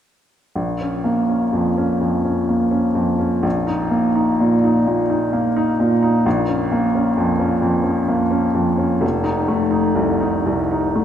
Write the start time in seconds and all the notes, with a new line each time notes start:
0.56 A#1
0.81 C#4
1.04 A#3
1.29 C#4
1.53 F2
1.77 C#4
2.01 F2
2.24 C#4
2.49 A#3
2.71 C#4
2.95 F2
3.19 C#4
3.43 A#1
3.67 D#4
3.90 A#3
4.16 D#4
4.40 A#2
4.64 D#4
4.87 A#2
5.10 D#4
5.33 A#3
5.57 D#4
5.80 A#2
6.03 D#4
6.26 A#1
6.49 C#4
6.72 A#3
6.95 C#4
7.17 F2
7.39 C#4
7.62 F2
7.83 C#4
8.08 A#3
8.31 C#4
8.54 F2
8.78 C#4
9.01 F1
9.24 D#4
9.48 A3
9.71 D#4
9.95 C2
10.20 D#4
10.46 C2
10.71 D#4
10.95 A3